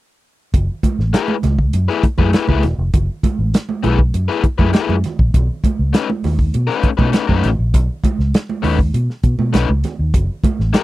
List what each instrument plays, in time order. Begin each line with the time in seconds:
0.54 fingered electric bass F#1, kick, closed hi-hat, low conga
0.83 kick, closed hi-hat, muted conga, high conga
0.99 fingered electric bass A1, snare
1.13 overdriven electric guitar A3 E4 G#4 B4, snare, closed hi-hat, muted conga
1.28 high conga
1.43 fingered electric bass C#2, snare, closed hi-hat, muted conga, high conga, low conga
1.59 kick
1.73 fingered electric bass F#2, closed hi-hat, muted conga
1.88 overdriven electric guitar A3 E4 G#4 B4, snare
2.03 muted fingered electric bass stroke, kick, closed hi-hat, muted conga
2.18 fingered electric bass F#2, overdriven electric guitar A3 E4 G#4 B4, kick, high conga
2.33 overdriven electric guitar A3 E4 G#4 B4, snare, closed hi-hat, muted conga
2.47 fingered electric bass C#2, overdriven electric guitar A3 E4 G#4 B4, kick, high conga
2.63 fingered electric bass E1, snare, closed hi-hat, muted conga, low conga
2.78 fingered electric bass F1
2.94 fingered electric bass F#1, kick, closed hi-hat, muted conga, low conga
3.23 kick, closed hi-hat, muted conga, high conga
3.39 fingered electric bass A1
3.54 snare, closed hi-hat, muted conga
3.69 high conga
3.83 fingered electric bass B1, overdriven electric guitar A3 E4 G#4 B4, closed hi-hat, muted conga, high conga, low conga
3.99 kick
4.14 fingered electric bass F#2, closed hi-hat, muted conga
4.28 overdriven electric guitar A3 E4 G#4 B4, snare
4.44 muted fingered electric bass stroke, kick, closed hi-hat, muted conga
4.58 fingered electric bass F#2, overdriven electric guitar A3 E4 G#4 B4, kick, high conga
4.73 overdriven electric guitar A3 E4 G#4 B4, snare, closed hi-hat, muted conga
4.89 fingered electric bass F#2, high conga
5.04 snare, closed hi-hat, low conga
5.19 fingered electric bass A#1, kick
5.34 fingered electric bass B1, kick, closed hi-hat, muted conga, low conga
5.64 kick, closed hi-hat, high conga
5.79 fingered electric bass C#2
5.93 overdriven electric guitar A3 C#4 D#4 B4, snare, closed hi-hat, muted conga
6.10 high conga
6.24 fingered electric bass D#2, snare, open hi-hat, muted conga, high conga, low conga
6.39 kick
6.54 fingered electric bass B2, closed hi-hat, muted conga
6.67 overdriven electric guitar A3 C#4 D#4 B4, snare
6.83 muted fingered electric bass stroke, kick, closed hi-hat, muted conga
6.97 fingered electric bass B2, overdriven electric guitar A3 C#4 D#4 B4, kick, high conga
7.12 overdriven electric guitar A3 C#4 D#4 B4, snare, closed hi-hat
7.27 fingered electric bass F#2, overdriven electric guitar A3 C#4 D#4 B4, kick, high conga
7.44 fingered electric bass A1, snare, closed hi-hat, muted conga, low conga
7.59 fingered electric bass A#1
7.74 fingered electric bass B1, kick, closed hi-hat, low conga
8.04 kick, closed hi-hat, muted conga, high conga
8.19 fingered electric bass C#2, snare
8.34 snare, closed hi-hat, muted conga
8.49 high conga
8.62 fingered electric bass D#2, overdriven electric guitar A3 C#4 D#4 B4, open hi-hat, muted conga, high conga, low conga
8.79 kick
8.94 fingered electric bass B2, closed hi-hat, muted conga
9.10 snare
9.23 fingered electric bass B2, kick, closed hi-hat
9.39 fingered electric bass B2, high conga
9.53 fingered electric bass B1, overdriven electric guitar A3 C#4 D#4 B4, snare, closed hi-hat, muted conga
9.69 fingered electric bass C#2, high conga
9.84 snare, closed hi-hat, low conga
9.99 fingered electric bass D#2
10.14 fingered electric bass F#1, kick, closed hi-hat, low conga
10.44 kick, closed hi-hat, muted conga, high conga
10.59 fingered electric bass A1, snare
10.73 overdriven electric guitar A3 E4 G#4 B4, snare, closed hi-hat, muted conga